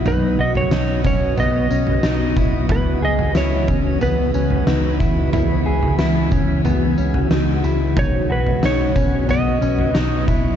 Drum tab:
TB |x---x-x-x-x-x-x-|x---x-x-x-x-x-x-|x---x-x-x-x-x-x-|x---x-x-x-x-x-x-|
SD |----o-------o---|----o-------o---|----o-------o---|----o-------o---|
FT |o--o----o--o--o-|o--o--o-o--o----|o--o--o-o--o----|o--o--o-o--o----|
BD |------o-------o-|o-----o-------o-|------o---------|o-----o-------o-|